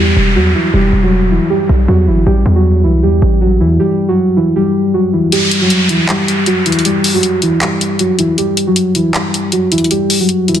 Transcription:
Already playing: 808-style bass E2, synth keys G4, downlifter
0.00 synth keys G3
0.16 808-style bass E1
0.35 808-style bass E2, synth keys F#3 F#4
0.55 synth keys E3 E4
0.74 808-style bass E1, synth keys G3 G4
0.93 808-style bass E1
1.03 synth keys F#3 F#4
1.31 synth keys E3 E4
1.50 synth keys G3 G4
1.69 808-style bass B1
1.88 808-style bass E2, synth keys F#3 F#4
2.07 808-style bass G1, synth keys E3 E4
2.27 808-style bass A1, synth keys G3 G4
2.46 808-style bass E2
2.56 synth keys F#3 F#4
2.84 808-style bass C2, synth keys E3 E4
3.03 808-style bass E2, synth keys G3 G4
3.22 808-style bass A1
3.41 synth keys F#3 F#4
3.60 808-style bass E2, synth keys E3 E4
3.79 synth keys G3 G4
4.09 synth keys F#3 F#4
4.37 synth keys E3 E4
4.56 synth keys G3 G4
4.94 synth keys F#3 F#4
5.13 synth keys E3 E4
5.32 synth keys G3 G4, closed hi-hat, downlifter
5.51 closed hi-hat
5.61 synth keys F#3 F#4
5.70 closed hi-hat
5.89 synth keys E3 E4, closed hi-hat
6.09 synth keys G3 G4, clap, closed hi-hat
6.28 closed hi-hat
6.46 synth keys F#3 F#4, closed hi-hat
6.66 synth keys E3 E4, closed hi-hat
6.72 closed hi-hat
6.79 closed hi-hat
6.85 synth keys G3 G4, closed hi-hat
7.04 open hi-hat
7.14 synth keys F#3 F#4
7.23 closed hi-hat
7.42 synth keys E3 E4, closed hi-hat
7.61 synth keys G3 G4, clap, closed hi-hat
7.81 closed hi-hat
7.99 synth keys F#3 F#4, closed hi-hat
8.19 synth keys E3 E4, closed hi-hat
8.38 synth keys G3 G4, closed hi-hat
8.57 closed hi-hat
8.67 synth keys F#3 F#4
8.76 closed hi-hat
8.95 synth keys E3 E4, closed hi-hat
9.14 synth keys G3 G4, clap, closed hi-hat
9.34 closed hi-hat
9.52 synth keys F#3 F#4, closed hi-hat
9.72 synth keys E3 E4, closed hi-hat
9.78 closed hi-hat
9.84 closed hi-hat
9.91 synth keys G3 G4, closed hi-hat
10.10 open hi-hat
10.20 synth keys F#3 F#4
10.29 closed hi-hat
10.48 synth keys E3 E4, closed hi-hat
10.55 closed hi-hat

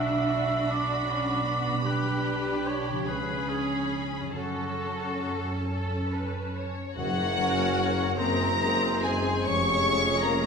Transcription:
Already playing: double bass section B1, harp B2 F#3 F#4 B4, viola section D4, cello section D4, violin section F#4 B5, oboe E5
0.69 viola section D4, oboe D5
1.08 viola section C#4
1.48 viola section B3
1.67 harp B2
1.72 harp G3
1.76 harp D4
1.85 viola section D4, violin section G4, cello section G4, oboe B4
2.67 oboe C#5
2.89 harp C#3
2.93 harp F3
2.98 harp D4
3.03 double bass section C#2, harp B4, violin section B5
3.07 viola section C#4, cello section G#4, violin section G#4, oboe B4
3.49 oboe G#4
4.20 harp F#2
4.24 harp F#3
4.29 harp C#4
4.33 double bass section F#2, viola section C#4, oboe F#4, harp A4, cello section A4, violin section A5
4.37 violin section A4
5.70 violin section A4
6.13 violin section B4
6.56 violin section C#5
6.96 tuba F#1, double bass section F#1, cello section F#2, timpani F#2, harp F#2, french horn section F#3, violin section F#4 F#5, clarinet A#4, oboe C#5, flute F#5
7.36 harp F#3, viola section C#4 A#4
7.76 harp C#4
8.17 double bass section F#1, tuba F#1, cello section F#2, harp F#2, french horn section A#3, viola section C4 G#4, clarinet G#4, violin section A#4 A#5, oboe C5, flute A#5
8.59 harp G#3, viola section C4 G#4
9.04 french horn section G#3, harp C4, violin section G#4 G#5, flute G#5
9.46 tuba F1, double bass section F1, cello section F2, harp F2, french horn section C#4, oboe C#5, violin section C#5 C#6, flute C#6
9.85 harp G#3, viola section C#4 G#4
10.22 french horn section A#3, violin section A#4 A#5, flute A#5

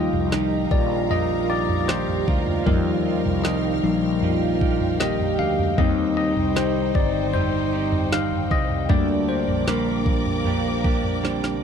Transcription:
Already playing: tine electric piano F3 G3 D#4 D#5 G5, clean electric guitar A#3 D#4 G4, french horn section F4, string section A#4 F5 G5 A#5
0.13 fretless electric bass C2, floor tom
0.32 clean electric guitar D#3 F3 A#3 D#4 G4, french horn section D#4, snare
0.71 fretless electric bass A#1, french horn section F4, tine electric piano D5, kick
1.10 clean electric guitar F3 A#3 D#4 G4, tine electric piano D#5, floor tom
1.50 clean electric guitar A#3 D#4 G4, tine electric piano D5
1.69 floor tom
1.81 tine electric piano D5
1.88 clean electric guitar D#3 F3 A#3 D#4 G4, french horn section G4, tine electric piano C5, snare
2.08 floor tom
2.27 fretless electric bass D2, clean electric guitar A#3 D#4 G4, french horn section F4, kick
2.47 floor tom
2.66 fretless electric bass D#2, clean electric guitar D#3 F3 A#3 D#4 G4, tine electric piano F3 G3 D#4 A#4, string section F6, kick, floor tom
3.05 clean electric guitar A#3 D#4 G4
3.25 fretless electric bass C2, floor tom
3.44 clean electric guitar D#3 F3 A#3 D#4 G4, french horn section D#4, tine electric piano D#5, snare
3.83 fretless electric bass A#1, tine electric piano F3 G3 D#4
4.22 clean electric guitar F3 A#3 D#4 G4, french horn section F4, floor tom
4.61 clean electric guitar A#3 D#4 G4, kick
4.81 floor tom
5.00 clean electric guitar D#3 F3 A#3 D#4 G4, french horn section G4, tine electric piano D#5, snare
5.20 floor tom
5.39 fretless electric bass D2, clean electric guitar A#3 D#4 G4, tine electric piano F5
5.59 floor tom
5.78 fretless electric bass D#2, clean electric guitar D#3 G3 C4 D#4 G4, tine electric piano G3 C4 D#4 D#5, string section D#4 C5, french horn section D#4, kick, floor tom
6.17 clean electric guitar C4 D#4 G4, tine electric piano D#5
6.37 fretless electric bass C2, floor tom
6.56 clean electric guitar D#3 G3 C4 D#4 G4, tine electric piano C5, snare
6.95 fretless electric bass G1, tine electric piano D5, kick
7.34 clean electric guitar G3 C4 D#4 G4, french horn section D#4, tine electric piano C5, floor tom
7.72 clean electric guitar C4 D#4 G4
7.92 floor tom
8.12 clean electric guitar D#3 G3 C4 D#4 G4, tine electric piano F5, snare
8.31 floor tom
8.51 fretless electric bass C2, clean electric guitar C4 D#4 G4, tine electric piano D#5, kick
8.69 floor tom
8.89 fretless electric bass D2, clean electric guitar D3 G3 A#3 D4 G4, tine electric piano G3 A#3 D4 D5, french horn section D4, string section A#4 D5 D6, kick, floor tom
9.28 clean electric guitar A#3 D4 G4, tine electric piano C5
9.48 fretless electric bass A#1, floor tom
9.67 clean electric guitar D3 G3 A#3 D4 G4, french horn section A#3, tine electric piano A#4, snare
10.06 kick
10.26 floor tom
10.45 clean electric guitar G3 A#3 D4 G4, floor tom
10.84 clean electric guitar A#3 D4 G4, kick
11.04 floor tom
11.23 clean electric guitar D3 G3 A#3 D4 G4, french horn section C4, snare
11.44 snare

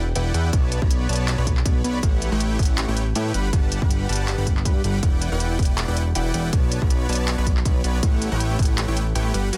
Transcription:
Already playing: analog synth bass E1
0.15 analog synth bass E1, supersaw synth E4 B4 D5 F#5 G5, closed hi-hat
0.34 analog synth bass E2, supersaw synth E4 B4 D5 F#5 G5, closed hi-hat
0.53 analog synth bass B1, supersaw synth B3 B4 C#5 D5, kick, closed hi-hat
0.72 closed hi-hat
0.82 analog synth bass B1, supersaw synth B4 C#5 B5, kick
0.91 closed hi-hat
1.09 analog synth bass B1, supersaw synth B3 B4 C#5 D5 A5, closed hi-hat
1.13 closed hi-hat
1.16 closed hi-hat
1.28 clap, closed hi-hat
1.38 analog synth bass B1, supersaw synth B3 B4 C#5 D5 B5
1.47 kick, closed hi-hat
1.57 clap
1.65 analog synth bass B1, supersaw synth B3 B4 C#5 D5 B5, kick, closed hi-hat
1.84 analog synth bass B1, supersaw synth B3 B4 C#5 D5 B5, closed hi-hat
2.03 analog synth bass A1, supersaw synth A3 G4 B4 F#5, kick, closed hi-hat
2.22 closed hi-hat
2.32 analog synth bass A1, supersaw synth A3 E4 G4 B4 C#5 G5
2.40 closed hi-hat
2.59 analog synth bass A1, supersaw synth A3 E4 G4 B4 C#5 F#5, kick, closed hi-hat
2.63 closed hi-hat
2.65 closed hi-hat
2.78 clap, closed hi-hat
2.88 analog synth bass A1, supersaw synth A3 E4 G4 B4 C#5 G5
2.97 closed hi-hat
3.15 analog synth bass A2, supersaw synth A3 E4 G4 B4 C#5 G5, closed hi-hat
3.34 analog synth bass G1, supersaw synth G3 G4 B4 F#5 B5, closed hi-hat
3.53 analog synth bass G1, supersaw synth G3 G4 B4 F#5 A5, kick, closed hi-hat
3.72 closed hi-hat
3.82 analog synth bass G1, supersaw synth G3 G4 B4 F#5 B5, kick
3.90 closed hi-hat
4.09 analog synth bass G1, supersaw synth G3 G4 B4 F#5 A5, closed hi-hat
4.13 closed hi-hat
4.15 closed hi-hat
4.28 clap, closed hi-hat
4.38 analog synth bass G1, supersaw synth G3 G4 B4 F#5 B5
4.47 kick, closed hi-hat
4.57 clap
4.65 analog synth bass G2, supersaw synth G3 G4 B4 F#5 B5, kick, closed hi-hat
4.84 analog synth bass G1, supersaw synth G3 G4 B4 F#5 B5, closed hi-hat
5.03 analog synth bass E1, supersaw synth E4 B4 D5 F#5 G5, kick, closed hi-hat
5.22 closed hi-hat
5.32 analog synth bass E1, supersaw synth E4 B4 D5 F#5 G5
5.40 closed hi-hat
5.59 analog synth bass E1, supersaw synth E4 B4 D5 F#5 G5, kick, closed hi-hat
5.63 closed hi-hat
5.65 closed hi-hat
5.78 clap, closed hi-hat
5.88 analog synth bass E1, supersaw synth E4 B4 D5 F#5 G5
5.97 closed hi-hat
6.15 analog synth bass E1, supersaw synth E4 B4 D5 F#5 G5, closed hi-hat
6.34 analog synth bass E1, supersaw synth E4 B4 D5 F#5 G5, closed hi-hat
6.53 analog synth bass B1, supersaw synth B3 C#5 D5, kick, closed hi-hat
6.72 closed hi-hat
6.82 analog synth bass B1, supersaw synth B3 B4 C#5 D5 B5, kick
6.90 closed hi-hat
7.09 analog synth bass B1, supersaw synth B3 B4 C#5 D5 A5, closed hi-hat
7.13 closed hi-hat
7.15 closed hi-hat
7.28 clap, closed hi-hat
7.38 analog synth bass B1, supersaw synth B3 B4 C#5 D5 B5
7.47 kick, closed hi-hat
7.57 clap
7.65 analog synth bass B1, supersaw synth B3 B4 C#5 D5 B5, kick, closed hi-hat
7.84 analog synth bass B1, supersaw synth B3 B4 C#5 D5 B5, closed hi-hat
8.03 analog synth bass A1, supersaw synth A3 E4 G4 B4, kick, closed hi-hat
8.22 closed hi-hat
8.32 analog synth bass A1, supersaw synth A3 E4 G4 B4 C#5 G5
8.40 closed hi-hat
8.59 analog synth bass A1, supersaw synth A3 E4 G4 B4 C#5, kick, closed hi-hat
8.63 closed hi-hat
8.65 closed hi-hat
8.78 clap, closed hi-hat
8.88 analog synth bass A1, supersaw synth A3 E4 G4 B4 C#5 G5
8.97 closed hi-hat
9.15 analog synth bass A1, supersaw synth A3 E4 G4 B4 C#5 G5, closed hi-hat
9.34 analog synth bass G1, supersaw synth G3 G4 B4 F#5 B5, closed hi-hat
9.53 supersaw synth G3 G4 B4 F#5 A5, closed hi-hat

